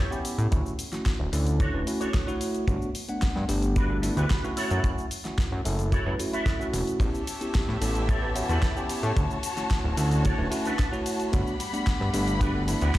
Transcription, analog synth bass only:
0.38 0.48 A2 loud
0.53 0.62 D2 medium
1.20 1.29 D1 medium
1.33 1.67 D2 medium
1.73 1.83 D1 loud
2.68 2.77 G1 loud
3.36 3.45 G2 medium
3.49 4.10 G1 medium
4.17 4.26 D2 medium
4.71 4.80 F#2 loud
4.84 4.93 F#1 loud
5.52 5.61 F#2 medium
5.66 5.99 F#1 medium
6.06 6.15 F#2 loud
6.73 6.83 E1 loud
7.00 7.10 A1 loud
7.68 7.78 A2 medium
7.81 8.42 A1 medium
8.49 8.58 E2 medium
9.03 9.12 A2 loud
9.17 9.26 D2 loud
9.84 9.94 D1 medium
9.97 10.32 D2 medium
10.38 10.47 D1 loud
11.34 11.43 G1 loud
12.01 12.10 G2 medium
12.14 12.75 G1 medium
12.82 12.91 D2 medium

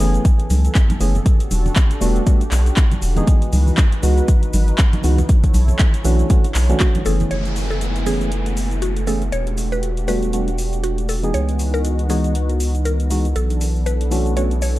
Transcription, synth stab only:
0.00 0.23 E3 medium
0.00 0.23 A3 medium
0.00 0.24 B3 medium
0.00 0.24 C#4 medium
0.00 0.24 G#4 loud
1.00 1.17 E3 medium
1.00 1.17 A3 medium
1.00 1.17 B3 medium
1.00 1.17 C#4 medium
1.00 1.17 G#4 medium
2.01 2.24 G3 medium
2.01 2.24 A3 medium
2.01 2.24 B3 medium
2.01 2.24 D4 medium
2.01 2.24 F#4 loud
2.26 2.43 G3 medium
2.26 2.43 A3 medium
2.26 2.43 B3 medium
2.26 2.43 D4 medium
2.26 2.43 F#4 medium
3.16 4.00 E3 medium
3.16 4.00 G#3 medium
3.16 4.01 B3 medium
3.16 4.01 D#4 medium
3.16 4.01 G#4 medium
4.03 4.27 E3 medium
4.03 4.27 G#3 medium
4.03 4.27 B3 medium
4.03 4.27 D#4 medium
4.03 4.27 F#4 medium
5.03 5.20 E3 medium
5.03 5.20 G#3 medium
5.03 5.20 B3 medium
5.03 5.20 D#4 medium
5.03 5.20 F#4 medium
6.04 6.27 E3 medium
6.04 6.27 A3 medium
6.04 6.27 C#4 medium
6.04 6.28 D4 medium
6.04 6.28 F#4 loud
6.30 6.46 E3 medium
6.30 6.46 A3 medium
6.30 6.46 C#4 medium
6.30 6.46 D4 medium
6.30 6.47 F#4 medium
6.69 7.03 E3 medium
6.69 7.03 A3 medium
6.69 7.03 C#4 medium
6.69 7.03 D4 medium
6.69 7.03 F#4 loud
7.05 7.56 E3 medium
7.05 7.56 A3 medium
7.05 7.56 B3 medium
7.05 7.56 C#4 medium
7.05 7.56 G#4 medium
8.06 8.30 E3 medium
8.06 8.30 A3 medium
8.06 8.30 B3 medium
8.06 8.30 C#4 medium
8.06 8.30 G#4 medium
9.07 9.23 E3 medium
9.07 9.23 A3 medium
9.07 9.24 B3 medium
9.07 9.24 C#4 medium
9.07 9.24 G#4 medium
10.08 10.31 G3 medium
10.08 10.31 A3 medium
10.08 10.31 B3 medium
10.08 10.31 D4 medium
10.08 10.31 F#4 loud
10.33 10.49 G3 medium
10.33 10.49 A3 medium
10.33 10.50 B3 medium
10.33 10.50 D4 medium
10.33 10.50 F#4 medium
11.23 12.07 E3 medium
11.23 12.07 G#3 medium
11.23 12.07 B3 medium
11.23 12.07 D#4 medium
11.23 12.08 G#4 medium
12.09 12.33 E3 medium
12.09 12.33 G#3 medium
12.09 12.34 B3 medium
12.09 12.34 D#4 medium
12.09 12.34 F#4 medium
13.10 13.27 E3 medium
13.10 13.27 G#3 medium
13.10 13.27 B3 medium
13.10 13.27 D#4 medium
13.10 13.27 F#4 medium
14.11 14.34 E3 medium
14.11 14.34 A3 medium
14.11 14.34 C#4 medium
14.11 14.34 D4 medium
14.11 14.34 F#4 loud
14.36 14.53 E3 medium
14.36 14.53 A3 medium
14.36 14.53 C#4 medium
14.36 14.53 D4 medium
14.36 14.53 F#4 medium

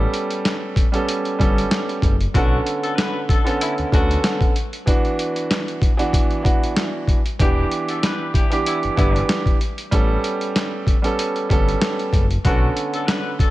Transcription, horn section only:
2.34 2.59 F#3 loud
2.34 2.59 D4 loud
2.34 2.59 F#4 loud
2.84 2.95 D4 medium
2.84 2.95 F#4 medium
2.84 2.95 A4 loud
2.96 3.22 D4 medium
2.96 3.22 F#4 medium
2.96 3.22 B4 loud
3.30 3.55 D4 medium
3.30 3.55 F#4 medium
3.30 3.55 A4 loud
3.60 3.74 A3 medium
3.60 3.74 C#4 medium
3.60 3.74 E4 loud
3.93 4.18 F#3 medium
3.93 4.18 D4 medium
3.93 4.18 F#4 loud
7.41 7.65 D4 loud
7.41 7.65 E4 loud
7.41 7.66 G4 loud
7.89 8.00 D4 medium
7.89 8.00 F#4 medium
7.89 8.00 A4 medium
8.04 8.29 E4 medium
8.04 8.29 G4 medium
8.04 8.29 B4 loud
8.34 8.59 D4 medium
8.34 8.59 E4 medium
8.34 8.59 G4 medium
8.66 8.80 G3 medium
8.66 8.80 B3 medium
8.66 8.80 E4 loud
8.97 9.23 G3 medium
8.97 9.23 B3 medium
8.97 9.23 E4 loud
12.45 12.70 F#3 loud
12.45 12.70 D4 loud
12.45 12.70 F#4 loud
12.94 13.05 D4 medium
12.94 13.05 F#4 medium
12.94 13.06 A4 loud
13.06 13.32 D4 medium
13.06 13.32 F#4 medium
13.06 13.32 B4 loud
13.40 13.50 D4 medium
13.40 13.50 F#4 medium
13.40 13.50 A4 loud

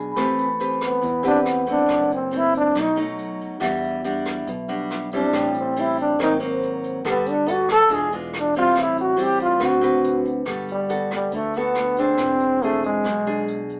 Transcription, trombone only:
0.85 1.23 B3 medium
1.28 1.40 D4 medium
1.71 2.10 D4 medium
2.14 2.38 C4 medium
2.37 2.56 E4 loud
2.57 2.82 D4 medium
2.81 2.99 D#4 medium
5.14 5.53 D4 medium
5.58 5.81 C4 medium
5.80 5.99 E4 loud
6.01 6.19 D4 medium
6.23 6.35 D#4 medium
7.10 7.31 B3 medium
7.30 7.53 D4 medium
7.52 7.71 F#4 medium
7.72 7.96 A4 loud
7.94 8.13 G#4 loud
8.16 8.32 B3 soft
8.39 8.57 D4 medium
8.58 8.82 F4 loud
8.81 8.99 E4 medium
9.01 9.25 F#4 medium
9.24 9.42 G4 loud
9.42 9.67 F4 loud
9.65 10.27 F#4 medium
10.72 11.10 G3 medium
11.15 11.37 G3 medium
11.35 11.59 A3 medium
11.58 12.01 B3 medium
12.00 12.65 C4 loud
12.64 12.84 A3 medium
12.86 13.66 G#3 medium

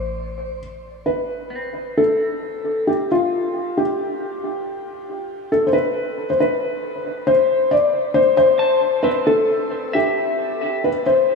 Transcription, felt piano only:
0.00 0.57 C5 medium
1.06 1.99 B4 medium
1.98 2.90 A4 medium
2.87 3.10 G4 medium
3.12 3.79 F4 medium
3.78 5.49 G4 medium
5.52 5.68 A4 medium
5.67 5.74 C5 medium
5.73 6.28 B4 medium
6.30 6.38 C5 medium
6.40 7.30 B4 medium
7.27 7.72 C5 medium
7.71 8.17 D5 medium
8.14 8.36 C5 medium
8.37 9.06 C5 loud
9.03 9.27 B4 medium
9.27 9.96 A4 medium
9.95 10.87 G4 medium
10.84 11.05 B4 medium
11.06 11.35 C5 medium

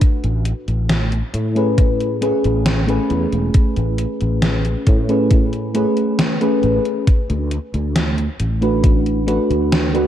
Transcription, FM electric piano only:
1.55 2.17 A3 medium
1.55 2.17 C#4 medium
1.55 2.17 G#4 medium
1.55 2.17 B4 medium
2.21 2.83 A3 medium
2.21 2.83 C#4 medium
2.21 2.83 G#4 medium
2.21 2.84 B4 medium
2.87 5.03 A3 medium
2.87 5.04 C#4 medium
2.87 5.04 G#4 medium
2.87 5.05 B4 loud
5.08 5.70 A3 medium
5.08 5.70 C#4 medium
5.08 5.70 G#4 medium
5.08 5.70 B4 medium
5.74 6.36 A3 medium
5.74 6.36 C#4 medium
5.74 6.36 G#4 medium
5.74 6.37 B4 medium
6.41 7.04 A3 medium
6.41 7.05 C#4 medium
6.41 7.05 G#4 medium
6.41 7.05 B4 loud
8.61 9.22 A3 medium
8.61 9.23 D4 medium
8.61 9.23 F#4 medium
8.61 9.23 B4 medium
9.27 9.88 A3 medium
9.27 9.89 D4 medium
9.27 9.89 F#4 medium
9.27 9.89 B4 medium
9.93 10.07 A3 medium
9.93 10.07 D4 medium
9.93 10.07 F#4 medium
9.93 10.07 B4 loud

